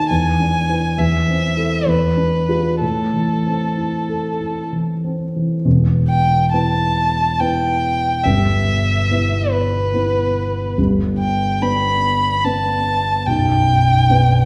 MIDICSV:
0, 0, Header, 1, 3, 480
1, 0, Start_track
1, 0, Key_signature, 0, "minor"
1, 0, Tempo, 883652
1, 54, Time_signature, 3, 2, 24, 8
1, 1015, Tempo, 946372
1, 2934, Key_signature, 1, "minor"
1, 2935, Tempo, 874636
1, 3415, Tempo, 851064
1, 5815, Tempo, 827586
1, 7942, End_track
2, 0, Start_track
2, 0, Title_t, "Violin"
2, 0, Program_c, 0, 40
2, 52, Note_on_c, 0, 80, 60
2, 533, Note_on_c, 0, 76, 57
2, 542, Note_off_c, 0, 80, 0
2, 1019, Note_on_c, 0, 71, 53
2, 1027, Note_off_c, 0, 76, 0
2, 1496, Note_off_c, 0, 71, 0
2, 1499, Note_on_c, 0, 69, 46
2, 2443, Note_off_c, 0, 69, 0
2, 3169, Note_on_c, 0, 79, 57
2, 3395, Note_off_c, 0, 79, 0
2, 3410, Note_on_c, 0, 81, 61
2, 3905, Note_on_c, 0, 79, 63
2, 3914, Note_off_c, 0, 81, 0
2, 4377, Note_on_c, 0, 76, 60
2, 4386, Note_off_c, 0, 79, 0
2, 5094, Note_on_c, 0, 71, 52
2, 5103, Note_off_c, 0, 76, 0
2, 5811, Note_off_c, 0, 71, 0
2, 6051, Note_on_c, 0, 79, 57
2, 6297, Note_on_c, 0, 83, 59
2, 6305, Note_off_c, 0, 79, 0
2, 6777, Note_on_c, 0, 81, 67
2, 6786, Note_off_c, 0, 83, 0
2, 7254, Note_on_c, 0, 79, 73
2, 7262, Note_off_c, 0, 81, 0
2, 7942, Note_off_c, 0, 79, 0
2, 7942, End_track
3, 0, Start_track
3, 0, Title_t, "Grand piano"
3, 0, Program_c, 1, 0
3, 0, Control_c, 1, 64, 127
3, 0, Note_on_c, 1, 51, 37
3, 0, Note_on_c, 1, 63, 36
3, 0, Note_on_c, 1, 66, 37
3, 0, Note_on_c, 1, 69, 37
3, 57, Note_off_c, 1, 51, 0
3, 59, Note_on_c, 1, 40, 45
3, 63, Control_c, 1, 64, 0
3, 67, Note_off_c, 1, 66, 0
3, 67, Note_off_c, 1, 69, 0
3, 68, Note_off_c, 1, 63, 0
3, 145, Control_c, 1, 64, 127
3, 217, Note_on_c, 1, 62, 32
3, 375, Note_on_c, 1, 64, 28
3, 379, Note_on_c, 1, 71, 33
3, 469, Note_off_c, 1, 62, 0
3, 517, Note_off_c, 1, 64, 0
3, 519, Note_off_c, 1, 40, 0
3, 519, Note_off_c, 1, 71, 0
3, 535, Note_on_c, 1, 40, 43
3, 541, Control_c, 1, 64, 0
3, 618, Control_c, 1, 64, 127
3, 694, Note_on_c, 1, 60, 32
3, 851, Note_on_c, 1, 64, 31
3, 853, Note_on_c, 1, 69, 31
3, 951, Note_off_c, 1, 60, 0
3, 999, Note_off_c, 1, 64, 0
3, 1000, Note_off_c, 1, 69, 0
3, 1003, Note_off_c, 1, 40, 0
3, 1014, Note_on_c, 1, 40, 39
3, 1026, Control_c, 1, 64, 0
3, 1114, Control_c, 1, 64, 127
3, 1169, Note_on_c, 1, 62, 31
3, 1330, Note_on_c, 1, 65, 30
3, 1332, Note_on_c, 1, 68, 32
3, 1429, Note_off_c, 1, 62, 0
3, 1478, Note_off_c, 1, 65, 0
3, 1479, Note_off_c, 1, 68, 0
3, 1481, Note_off_c, 1, 40, 0
3, 1492, Note_on_c, 1, 45, 34
3, 1507, Control_c, 1, 64, 0
3, 1597, Control_c, 1, 64, 127
3, 1656, Note_on_c, 1, 52, 29
3, 1818, Note_on_c, 1, 60, 27
3, 1915, Note_off_c, 1, 52, 0
3, 1982, Note_on_c, 1, 64, 31
3, 2075, Note_off_c, 1, 60, 0
3, 2144, Note_on_c, 1, 69, 29
3, 2237, Note_off_c, 1, 64, 0
3, 2302, Note_on_c, 1, 64, 28
3, 2399, Note_off_c, 1, 69, 0
3, 2463, Note_on_c, 1, 52, 28
3, 2559, Note_off_c, 1, 64, 0
3, 2624, Note_on_c, 1, 60, 29
3, 2720, Note_off_c, 1, 52, 0
3, 2787, Note_on_c, 1, 52, 29
3, 2876, Note_off_c, 1, 60, 0
3, 2912, Note_off_c, 1, 45, 0
3, 2935, Note_on_c, 1, 40, 40
3, 2936, Note_on_c, 1, 28, 38
3, 2937, Note_off_c, 1, 52, 0
3, 2944, Control_c, 1, 64, 0
3, 3028, Control_c, 1, 64, 127
3, 3415, Note_on_c, 1, 59, 34
3, 3419, Note_on_c, 1, 64, 35
3, 3420, Note_on_c, 1, 71, 37
3, 3881, Note_off_c, 1, 59, 0
3, 3884, Note_off_c, 1, 64, 0
3, 3884, Note_off_c, 1, 71, 0
3, 3906, Note_on_c, 1, 59, 33
3, 3909, Note_on_c, 1, 64, 34
3, 3911, Note_on_c, 1, 71, 37
3, 4363, Note_off_c, 1, 40, 0
3, 4363, Note_off_c, 1, 59, 0
3, 4364, Note_off_c, 1, 28, 0
3, 4365, Note_off_c, 1, 64, 0
3, 4366, Note_off_c, 1, 71, 0
3, 4389, Note_on_c, 1, 31, 37
3, 4390, Note_on_c, 1, 43, 41
3, 4396, Control_c, 1, 64, 0
3, 4469, Control_c, 1, 64, 127
3, 4868, Note_on_c, 1, 59, 33
3, 4870, Note_on_c, 1, 64, 31
3, 4873, Note_on_c, 1, 71, 39
3, 5317, Note_off_c, 1, 59, 0
3, 5318, Note_off_c, 1, 64, 0
3, 5320, Note_off_c, 1, 71, 0
3, 5337, Note_on_c, 1, 59, 35
3, 5340, Note_on_c, 1, 64, 34
3, 5341, Note_on_c, 1, 71, 38
3, 5791, Note_off_c, 1, 59, 0
3, 5793, Note_off_c, 1, 31, 0
3, 5793, Note_off_c, 1, 43, 0
3, 5793, Note_off_c, 1, 64, 0
3, 5793, Note_off_c, 1, 71, 0
3, 5814, Note_on_c, 1, 31, 39
3, 5816, Note_on_c, 1, 43, 41
3, 5824, Control_c, 1, 64, 0
3, 5931, Control_c, 1, 64, 127
3, 6297, Note_on_c, 1, 59, 34
3, 6299, Note_on_c, 1, 62, 36
3, 6303, Note_on_c, 1, 71, 38
3, 6756, Note_off_c, 1, 59, 0
3, 6757, Note_off_c, 1, 62, 0
3, 6759, Note_off_c, 1, 71, 0
3, 6779, Note_on_c, 1, 59, 37
3, 6780, Note_on_c, 1, 62, 35
3, 6783, Note_on_c, 1, 71, 40
3, 7238, Note_off_c, 1, 59, 0
3, 7238, Note_off_c, 1, 62, 0
3, 7239, Note_off_c, 1, 31, 0
3, 7240, Note_off_c, 1, 43, 0
3, 7240, Note_off_c, 1, 71, 0
3, 7258, Note_on_c, 1, 23, 41
3, 7258, Note_on_c, 1, 35, 45
3, 7271, Control_c, 1, 64, 0
3, 7365, Control_c, 1, 64, 127
3, 7736, Note_on_c, 1, 59, 37
3, 7738, Note_on_c, 1, 62, 37
3, 7742, Note_on_c, 1, 71, 41
3, 7942, Note_off_c, 1, 23, 0
3, 7942, Note_off_c, 1, 35, 0
3, 7942, Note_off_c, 1, 59, 0
3, 7942, Note_off_c, 1, 62, 0
3, 7942, Note_off_c, 1, 71, 0
3, 7942, End_track
0, 0, End_of_file